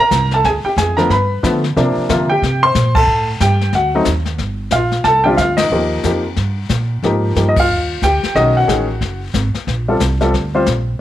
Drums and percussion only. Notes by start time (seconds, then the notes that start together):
0.11 kick, snare, hi-hat pedal
0.31 snare
0.44 brush sweep, kick, snare
0.77 kick, snare, hi-hat pedal
0.98 snare
1.10 brush sweep, kick, snare
1.43 kick, snare, hi-hat pedal
1.64 snare
1.76 brush sweep, kick, snare
2.09 kick, snare, hi-hat pedal
2.42 brush sweep, kick, snare
2.75 kick, snare, hi-hat pedal
2.95 kick, crash
3.09 brush sweep
3.40 kick, snare, hi-hat pedal
3.61 snare
3.73 brush sweep, kick, snare
4.05 kick, snare, hi-hat pedal
4.26 snare
4.38 brush sweep, kick, snare
4.71 kick, snare, hi-hat pedal
4.91 snare
5.04 brush sweep, kick, snare
5.38 kick, snare, hi-hat pedal
5.57 snare, ride
5.70 brush sweep
6.03 kick, snare, hi-hat pedal
6.36 brush sweep, kick, snare
6.69 kick, snare, hi-hat pedal
7.03 brush sweep, kick, snare
7.36 kick, snare, hi-hat pedal
7.56 kick, ride
7.69 brush sweep
8.02 kick, snare, hi-hat pedal
8.23 snare
8.35 brush sweep, kick, snare
8.68 kick, snare, hi-hat pedal
9.01 brush sweep, kick, snare
9.34 kick, snare, hi-hat pedal
9.55 snare
9.67 brush sweep, kick, snare
10.00 kick, snare, hi-hat pedal
10.21 snare
10.33 brush sweep, kick, snare
10.66 kick, snare, hi-hat pedal